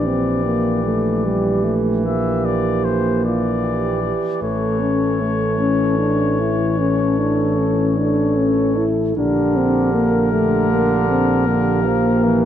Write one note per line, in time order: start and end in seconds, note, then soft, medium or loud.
0.00 4.10 A#1 soft
0.00 8.85 E3 soft
0.00 2.01 G4 soft
0.00 1.74 D5 soft
0.06 0.44 C4 soft
0.45 0.84 A#3 soft
0.85 1.26 A3 soft
1.25 1.66 G3 soft
1.64 2.05 A3 soft
2.04 4.02 A#3 soft
2.04 3.22 G4 soft
2.04 2.47 E5 soft
2.45 2.86 D5 soft
2.85 3.24 C5 soft
3.25 3.64 F4 soft
3.25 4.40 D5 soft
3.64 4.02 G4 soft
4.03 4.41 G4 soft
4.41 9.14 A1 soft
4.41 4.82 A3 soft
4.41 6.62 A4 soft
4.41 8.86 C#5 soft
4.80 5.22 C#4 soft
5.21 5.59 A3 soft
5.60 5.98 C#4 medium
5.99 6.40 D4 medium
6.39 6.80 E4 medium
6.78 7.20 C#4 medium
6.78 7.96 A4 soft
7.18 7.59 D4 medium
7.58 7.99 C#4 medium
7.97 8.39 D4 medium
7.97 9.16 A4 soft
8.37 8.78 C#4 medium
8.77 9.16 E4 medium
9.17 12.45 A#1 soft
9.17 10.28 D3 soft
9.17 9.58 D4 medium
9.17 11.44 G4 soft
9.17 12.45 A#4 soft
9.56 9.93 C4 medium
9.94 10.33 A#3 medium
10.32 11.46 D3 soft
10.32 10.72 A3 medium
10.70 11.09 A#3 medium
11.09 11.49 C4 medium
11.47 11.87 D3 soft
11.47 12.45 A#3 medium
11.47 12.45 G4 soft
11.86 12.25 F3 soft
12.24 12.45 E3 soft